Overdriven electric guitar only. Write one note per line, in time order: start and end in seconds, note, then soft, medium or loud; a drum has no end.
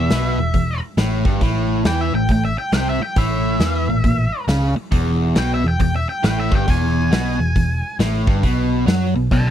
0.00 0.10 E2 loud
0.11 0.38 B2 loud
0.38 0.51 E2 medium
0.54 0.76 E2 medium
0.98 1.25 A2 loud
1.25 1.41 G2 loud
1.42 1.85 A2 medium
1.85 2.12 E3 medium
2.14 2.26 A2 medium
2.30 2.52 A2 medium
2.73 3.00 C3 loud
3.02 muted overdriven electric guitar stroke medium
3.17 3.60 A2 medium
3.61 3.88 E3 medium
3.90 4.02 A#2 medium
4.05 4.27 A#2 medium
4.48 4.75 C#3 loud
4.76 muted overdriven electric guitar stroke medium
4.91 5.35 E2 loud
5.35 5.63 B2 medium
5.64 5.77 E2 medium
5.80 6.02 E2 medium
6.24 6.51 A2 loud
6.51 6.67 G2 loud
6.68 7.11 E2 loud
7.11 7.38 B2 medium
7.40 7.52 E2 medium
7.56 7.78 E2 medium
8.00 8.27 A2 loud
8.27 8.43 G2 loud
8.44 8.87 B2 medium
8.87 9.14 F#3 medium
9.16 9.29 B2 medium
9.32 9.50 B2 medium